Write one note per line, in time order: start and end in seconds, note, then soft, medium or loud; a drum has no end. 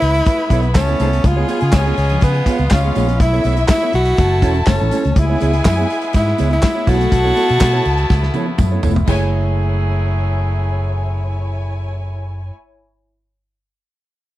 0.00 0.20 C#2 medium
0.00 5.12 C#3 medium
0.00 1.22 A3 medium
0.00 4.14 B3 medium
0.00 0.71 E4 loud
0.00 1.21 E4 loud
0.00 0.72 B4 loud
0.00 0.72 B5 loud
0.00 closed hi-hat medium
0.00 tambourine soft
0.14 muted clean electric guitar stroke medium
0.14 closed hi-hat medium
0.26 muted clean electric guitar stroke soft
0.26 kick loud
0.26 closed hi-hat medium
0.26 tambourine medium
0.26 muted conga medium
0.39 muted clean electric guitar stroke soft
0.50 0.76 B1 loud
0.50 0.67 B3 medium
0.50 0.64 E4 medium
0.50 0.63 A4 loud
0.50 0.63 C#5 medium
0.50 kick loud
0.50 closed hi-hat medium
0.50 tambourine medium
0.63 muted clean electric guitar stroke medium
0.63 closed hi-hat soft
0.75 0.94 C#2 medium
0.75 1.28 C#4 medium
0.75 1.23 A4 medium
0.75 1.23 A5 medium
0.75 muted clean electric guitar stroke soft
0.75 kick loud
0.75 snare loud
0.75 clap medium
0.75 tambourine medium
0.75 high conga medium
0.88 0.98 B3 medium
0.88 0.99 E4 medium
0.88 1.00 A4 medium
0.88 0.99 C#5 medium
0.88 closed hi-hat soft
0.99 1.18 C2 loud
0.99 1.20 B3 medium
0.99 1.13 E4 medium
0.99 1.12 A4 medium
0.99 1.12 C#5 medium
0.99 closed hi-hat medium
0.99 tambourine medium
0.99 high conga medium
1.13 muted clean electric guitar stroke soft
1.13 closed hi-hat medium
1.23 1.43 C#2 loud
1.23 3.17 G#3 medium
1.23 3.18 F4 loud
1.23 1.76 F4 loud
1.23 2.44 G#4 loud
1.23 2.44 G#5 loud
1.23 muted clean electric guitar stroke soft
1.23 kick loud
1.23 closed hi-hat medium
1.23 tambourine soft
1.23 muted conga medium
1.37 1.47 B3 medium
1.37 1.48 F4 medium
1.37 1.48 G#4 medium
1.37 1.49 C#5 loud
1.48 1.61 B3 medium
1.48 1.62 F4 medium
1.48 1.62 G#4 medium
1.48 1.61 C#5 medium
1.48 closed hi-hat medium
1.48 tambourine medium
1.48 muted conga medium
1.61 1.71 C#3 loud
1.61 muted clean electric guitar stroke soft
1.61 closed hi-hat medium
1.72 1.91 C#2 loud
1.72 2.23 C#4 loud
1.72 muted clean electric guitar stroke medium
1.72 kick loud
1.72 snare loud
1.72 clap loud
1.72 tambourine loud
1.72 high conga medium
1.86 1.97 B3 medium
1.86 1.97 F4 medium
1.86 1.98 G#4 medium
1.86 1.98 C#5 medium
1.86 closed hi-hat soft
1.98 2.16 C#2 loud
1.98 closed hi-hat medium
1.98 tambourine soft
2.09 muted clean electric guitar stroke soft
2.09 closed hi-hat medium
2.09 low conga medium
2.21 2.40 C#3 loud
2.21 2.74 B3 medium
2.21 muted clean electric guitar stroke soft
2.21 kick loud
2.21 closed hi-hat medium
2.21 tambourine medium
2.21 muted conga soft
2.34 muted clean electric guitar stroke medium
2.34 closed hi-hat soft
2.46 2.63 B3 medium
2.46 3.19 F4 medium
2.46 2.61 F4 medium
2.46 2.60 G#4 medium
2.46 2.59 C#5 medium
2.46 3.19 F5 loud
2.46 kick loud
2.46 closed hi-hat medium
2.46 tambourine medium
2.46 muted conga soft
2.58 2.68 C#2 medium
2.58 muted clean electric guitar stroke medium
2.58 closed hi-hat soft
2.70 2.89 C#2 loud
2.70 3.21 C#4 medium
2.70 muted clean electric guitar stroke soft
2.70 kick loud
2.70 snare loud
2.70 clap medium
2.70 tambourine medium
2.70 high conga medium
2.84 2.94 B3 medium
2.84 2.95 F4 medium
2.84 2.96 G#4 medium
2.84 2.95 C#5 medium
2.95 3.20 A#1 loud
2.95 3.11 B3 medium
2.95 3.09 F4 medium
2.95 3.09 G#4 medium
2.95 3.08 C#5 medium
2.95 closed hi-hat medium
2.95 tambourine medium
2.95 high conga medium
3.09 muted clean electric guitar stroke medium
3.09 closed hi-hat medium
3.19 3.38 B1 loud
3.19 4.99 A3 medium
3.19 4.99 E4 loud
3.19 4.16 E4 medium
3.19 3.66 E4 loud
3.19 4.16 E5 loud
3.19 muted clean electric guitar stroke soft
3.19 kick loud
3.19 closed hi-hat medium
3.19 muted conga medium
3.33 3.43 B3 medium
3.33 3.44 E4 medium
3.33 3.45 A4 medium
3.33 3.45 C#5 medium
3.33 closed hi-hat soft
3.44 3.63 B1 medium
3.44 3.57 B3 medium
3.44 3.58 E4 medium
3.44 3.57 A4 medium
3.44 3.56 C#5 medium
3.44 closed hi-hat medium
3.44 tambourine medium
3.44 muted conga soft
3.57 muted clean electric guitar stroke soft
3.57 closed hi-hat medium
3.68 3.92 E4 loud
3.68 muted clean electric guitar stroke soft
3.68 kick loud
3.68 snare loud
3.68 clap medium
3.68 tambourine loud
3.68 high conga medium
3.81 3.92 B3 medium
3.81 3.93 E4 medium
3.81 3.93 A4 medium
3.81 3.94 C#5 medium
3.81 closed hi-hat soft
3.93 4.12 B1 medium
3.93 4.64 F#4 loud
3.93 muted clean electric guitar stroke soft
3.93 closed hi-hat medium
4.05 muted clean electric guitar stroke soft
4.05 closed hi-hat medium
4.17 4.43 F#1 loud
4.17 4.99 F#3 medium
4.17 5.14 A4 medium
4.17 5.14 A5 loud
4.17 muted clean electric guitar stroke soft
4.17 kick loud
4.17 closed hi-hat medium
4.17 tambourine medium
4.17 muted conga medium
4.32 muted clean electric guitar stroke medium
4.42 4.61 E1 loud
4.42 4.58 C#4 medium
4.42 4.56 E4 loud
4.42 4.55 A4 medium
4.42 4.54 C#5 loud
4.42 kick loud
4.42 closed hi-hat medium
4.42 tambourine soft
4.54 muted clean electric guitar stroke soft
4.54 closed hi-hat soft
4.66 4.77 F#1 medium
4.66 5.20 C#4 medium
4.66 muted clean electric guitar stroke soft
4.66 kick loud
4.66 snare loud
4.66 clap medium
4.66 tambourine medium
4.66 high conga medium
4.80 4.89 A1 medium
4.80 4.91 C#4 soft
4.80 4.92 E4 medium
4.80 4.92 A4 medium
4.80 4.91 C#5 medium
4.80 closed hi-hat soft
4.80 high conga medium
4.91 5.07 C#4 medium
4.91 5.06 E4 medium
4.91 5.05 A4 medium
4.91 5.04 C#5 medium
4.91 closed hi-hat medium
4.91 tambourine medium
4.91 high conga medium
5.05 5.14 C#2 medium
5.05 muted clean electric guitar stroke medium
5.05 closed hi-hat medium
5.16 5.34 C#2 medium
5.16 9.04 C#3 medium
5.16 6.86 G#3 medium
5.16 6.86 B3 medium
5.16 9.04 E4 loud
5.16 5.66 E4 loud
5.16 6.60 G#4 loud
5.16 6.60 G#5 loud
5.16 muted clean electric guitar stroke soft
5.16 kick loud
5.16 closed hi-hat medium
5.16 tambourine soft
5.16 muted conga medium
5.30 5.39 B3 medium
5.30 5.40 E4 medium
5.30 5.41 G#4 medium
5.30 5.41 C#5 medium
5.40 5.59 C#2 loud
5.40 5.53 B3 medium
5.40 5.53 E4 medium
5.40 5.54 G#4 medium
5.40 5.53 C#5 medium
5.40 closed hi-hat medium
5.40 tambourine medium
5.40 muted conga medium
5.53 muted clean electric guitar stroke soft
5.53 closed hi-hat medium
5.65 5.84 F#2 medium
5.65 6.11 E4 medium
5.65 kick loud
5.65 snare loud
5.65 clap loud
5.65 tambourine loud
5.65 high conga medium
5.78 5.88 B3 medium
5.78 5.89 E4 medium
5.78 5.90 G#4 medium
5.78 5.90 C#5 medium
5.90 closed hi-hat medium
5.90 tambourine soft
6.02 muted clean electric guitar stroke soft
6.02 closed hi-hat medium
6.13 6.33 G#2 loud
6.13 6.50 E4 loud
6.13 muted clean electric guitar stroke medium
6.13 kick loud
6.13 closed hi-hat medium
6.13 tambourine medium
6.13 muted conga medium
6.27 muted clean electric guitar stroke medium
6.27 snare soft
6.38 6.57 C#2 loud
6.38 6.54 B3 medium
6.38 6.51 E4 medium
6.38 6.51 G#4 loud
6.38 6.50 C#5 loud
6.38 closed hi-hat medium
6.38 tambourine medium
6.38 muted conga soft
6.51 6.90 E4 loud
6.51 muted clean electric guitar stroke medium
6.51 closed hi-hat soft
6.62 muted clean electric guitar stroke soft
6.62 kick loud
6.62 snare loud
6.62 clap medium
6.62 tambourine medium
6.62 high conga medium
6.75 6.85 B3 soft
6.75 6.86 E4 medium
6.75 6.87 G#4 medium
6.75 6.87 C#5 medium
6.87 7.05 B1 loud
6.87 9.06 A3 medium
6.87 7.03 B3 medium
6.87 9.06 B3 medium
6.87 7.00 E4 loud
6.87 8.60 F#4 loud
6.87 8.80 A4 loud
6.87 6.99 A4 medium
6.87 6.99 C#5 medium
6.87 8.80 A5 loud
6.87 kick loud
6.87 open hi-hat medium
6.87 tambourine medium
6.87 high conga medium
7.00 muted clean electric guitar stroke medium
7.00 closed hi-hat medium
7.11 7.30 B1 loud
7.11 muted clean electric guitar stroke soft
7.11 kick loud
7.11 closed hi-hat medium
7.11 tambourine soft
7.11 muted conga medium
7.24 7.35 B3 medium
7.24 7.35 E4 medium
7.24 7.36 A4 medium
7.24 7.37 C#5 medium
7.24 closed hi-hat soft
7.36 7.49 B3 medium
7.36 7.49 E4 medium
7.36 7.49 A4 medium
7.36 7.48 C#5 medium
7.36 closed hi-hat medium
7.36 tambourine soft
7.36 muted conga medium
7.49 7.59 B2 medium
7.49 muted clean electric guitar stroke soft
7.49 closed hi-hat medium
7.60 7.79 B2 medium
7.60 kick loud
7.60 snare loud
7.60 clap loud
7.60 tambourine loud
7.60 high conga medium
7.73 7.84 B3 medium
7.73 7.85 E4 medium
7.73 7.85 A4 medium
7.73 7.86 C#5 medium
7.85 8.04 C#2 medium
7.85 muted clean electric guitar stroke soft
7.85 closed hi-hat medium
7.98 muted clean electric guitar stroke soft
7.98 closed hi-hat medium
8.10 8.28 C#2 medium
8.10 muted clean electric guitar stroke soft
8.10 kick loud
8.10 snare medium
8.10 tambourine soft
8.10 muted conga medium
8.23 muted clean electric guitar stroke soft
8.23 snare medium
8.34 8.50 B3 medium
8.34 8.48 E4 medium
8.34 8.48 A4 medium
8.34 8.47 C#5 medium
8.34 high tom medium
8.34 tambourine soft
8.34 muted conga soft
8.34 low conga medium
8.48 muted clean electric guitar stroke medium
8.58 8.77 F#2 medium
8.58 muted clean electric guitar stroke soft
8.58 kick loud
8.58 mid tom medium
8.58 tambourine medium
8.58 high conga medium
8.72 8.82 B3 medium
8.72 8.82 E4 medium
8.72 8.83 A4 medium
8.72 8.83 C#5 medium
8.83 9.02 F1 medium
8.83 8.99 B3 medium
8.83 8.96 E4 medium
8.83 8.95 A4 medium
8.83 8.95 C#5 medium
8.83 floor tom loud
8.83 tambourine medium
8.83 high conga medium
8.96 muted clean electric guitar stroke soft
8.96 floor tom medium
9.06 12.50 F#1 medium
9.06 12.50 F#3 medium
9.06 12.56 A3 medium
9.06 12.50 A3 medium
9.06 12.49 E4 medium
9.06 12.58 E4 medium
9.06 12.51 E4 medium
9.06 12.50 G#4 medium
9.06 12.59 G#4 medium
9.06 12.49 C#5 loud
9.06 12.49 G#5 loud
9.06 kick loud
9.06 crash medium
9.06 tambourine medium
9.06 muted conga medium
9.11 12.61 C#5 medium